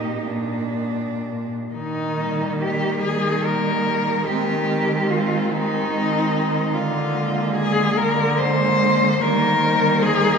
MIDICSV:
0, 0, Header, 1, 5, 480
1, 0, Start_track
1, 0, Key_signature, -3, "major"
1, 0, Tempo, 978793
1, 851, Time_signature, 6, 3, 24, 8
1, 851, Tempo, 870827
1, 1331, Tempo, 832178
1, 3251, Tempo, 819672
1, 5856, End_track
2, 0, Start_track
2, 0, Title_t, "Cello"
2, 0, Program_c, 0, 42
2, 0, Note_on_c, 0, 67, 39
2, 117, Note_off_c, 0, 67, 0
2, 854, Note_on_c, 0, 63, 57
2, 1311, Note_off_c, 0, 63, 0
2, 1333, Note_on_c, 0, 67, 63
2, 1563, Note_off_c, 0, 67, 0
2, 1566, Note_on_c, 0, 68, 68
2, 1809, Note_on_c, 0, 70, 72
2, 1817, Note_off_c, 0, 68, 0
2, 2283, Note_on_c, 0, 67, 68
2, 2292, Note_off_c, 0, 70, 0
2, 2771, Note_on_c, 0, 65, 61
2, 2780, Note_off_c, 0, 67, 0
2, 3016, Note_on_c, 0, 63, 79
2, 3025, Note_off_c, 0, 65, 0
2, 3718, Note_on_c, 0, 65, 65
2, 3727, Note_off_c, 0, 63, 0
2, 4199, Note_off_c, 0, 65, 0
2, 4202, Note_on_c, 0, 68, 78
2, 4446, Note_on_c, 0, 70, 78
2, 4455, Note_off_c, 0, 68, 0
2, 4687, Note_on_c, 0, 72, 81
2, 4696, Note_off_c, 0, 70, 0
2, 5172, Note_on_c, 0, 70, 85
2, 5181, Note_off_c, 0, 72, 0
2, 5644, Note_on_c, 0, 68, 88
2, 5653, Note_off_c, 0, 70, 0
2, 5856, Note_off_c, 0, 68, 0
2, 5856, End_track
3, 0, Start_track
3, 0, Title_t, "Cello"
3, 0, Program_c, 1, 42
3, 0, Note_on_c, 1, 63, 37
3, 131, Note_on_c, 1, 62, 32
3, 139, Note_off_c, 1, 63, 0
3, 745, Note_off_c, 1, 62, 0
3, 1089, Note_on_c, 1, 58, 41
3, 1800, Note_off_c, 1, 58, 0
3, 1812, Note_on_c, 1, 58, 46
3, 2280, Note_off_c, 1, 58, 0
3, 2286, Note_on_c, 1, 60, 45
3, 2518, Note_off_c, 1, 60, 0
3, 2522, Note_on_c, 1, 60, 44
3, 3233, Note_off_c, 1, 60, 0
3, 3246, Note_on_c, 1, 60, 45
3, 3709, Note_off_c, 1, 60, 0
3, 3955, Note_on_c, 1, 58, 47
3, 4676, Note_off_c, 1, 58, 0
3, 4689, Note_on_c, 1, 58, 49
3, 5159, Note_off_c, 1, 58, 0
3, 5168, Note_on_c, 1, 58, 58
3, 5400, Note_off_c, 1, 58, 0
3, 5404, Note_on_c, 1, 58, 49
3, 5856, Note_off_c, 1, 58, 0
3, 5856, End_track
4, 0, Start_track
4, 0, Title_t, "Cello"
4, 0, Program_c, 2, 42
4, 0, Note_on_c, 2, 58, 39
4, 502, Note_off_c, 2, 58, 0
4, 1089, Note_on_c, 2, 55, 45
4, 1800, Note_off_c, 2, 55, 0
4, 1814, Note_on_c, 2, 55, 41
4, 2281, Note_off_c, 2, 55, 0
4, 2291, Note_on_c, 2, 56, 42
4, 2522, Note_off_c, 2, 56, 0
4, 2526, Note_on_c, 2, 56, 47
4, 3235, Note_off_c, 2, 56, 0
4, 3250, Note_on_c, 2, 56, 39
4, 3711, Note_off_c, 2, 56, 0
4, 3957, Note_on_c, 2, 56, 51
4, 4677, Note_off_c, 2, 56, 0
4, 4691, Note_on_c, 2, 56, 49
4, 5159, Note_off_c, 2, 56, 0
4, 5172, Note_on_c, 2, 55, 52
4, 5404, Note_off_c, 2, 55, 0
4, 5412, Note_on_c, 2, 55, 53
4, 5856, Note_off_c, 2, 55, 0
4, 5856, End_track
5, 0, Start_track
5, 0, Title_t, "Cello"
5, 0, Program_c, 3, 42
5, 0, Note_on_c, 3, 46, 40
5, 119, Note_off_c, 3, 46, 0
5, 134, Note_on_c, 3, 46, 37
5, 734, Note_off_c, 3, 46, 0
5, 853, Note_on_c, 3, 51, 58
5, 1490, Note_off_c, 3, 51, 0
5, 1573, Note_on_c, 3, 51, 58
5, 2207, Note_off_c, 3, 51, 0
5, 2291, Note_on_c, 3, 51, 60
5, 2929, Note_off_c, 3, 51, 0
5, 3011, Note_on_c, 3, 51, 59
5, 3636, Note_off_c, 3, 51, 0
5, 3716, Note_on_c, 3, 50, 63
5, 4362, Note_off_c, 3, 50, 0
5, 4447, Note_on_c, 3, 50, 68
5, 5084, Note_off_c, 3, 50, 0
5, 5168, Note_on_c, 3, 51, 71
5, 5804, Note_off_c, 3, 51, 0
5, 5856, End_track
0, 0, End_of_file